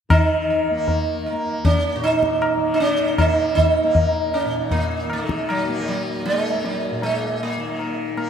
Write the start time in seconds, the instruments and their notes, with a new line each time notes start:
0.09 tanpura D#3, sitar D#4, tabla na, tabla ge
0.50 sitar A#4
0.71 tanpura A#3
0.88 tabla tin, tabla ge
1.26 sitar A#4
1.32 tanpura A#3
1.65 sitar C#4, tabla tin, tabla ge
1.95 tanpura A#2, sitar F#4
2.04 sitar D#4, tabla na
2.23 tabla ke
2.41 sitar A#4, tabla na
2.57 tanpura D#3
2.74 sitar D#4
2.80 sitar C#4
3.18 tanpura A#3, sitar D#4, tabla na, tabla ge
3.55 sitar D#4, tabla ge
3.84 tanpura A#3
3.94 sitar A#4, tabla tin, tabla ge
4.34 sitar C#4, tabla na
4.45 tanpura A#2
4.71 sitar A#3, tabla tin, tabla ge
5.07 tanpura D#3, tabla na
5.13 sitar G#3
5.29 tabla ke
5.49 sitar F#3, tabla na
5.69 tanpura A#3
5.81 sitar G#3
5.88 sitar F#3
6.25 sitar G#3, tabla te
6.32 tanpura A#3
6.64 sitar F#3, tabla te
6.91 tanpura A#2
7.02 sitar G#3, tabla tin
7.43 sitar A#3
7.56 tanpura D#3
7.79 sitar A#4, tabla tin
8.17 tanpura A#3, sitar A#4, tabla na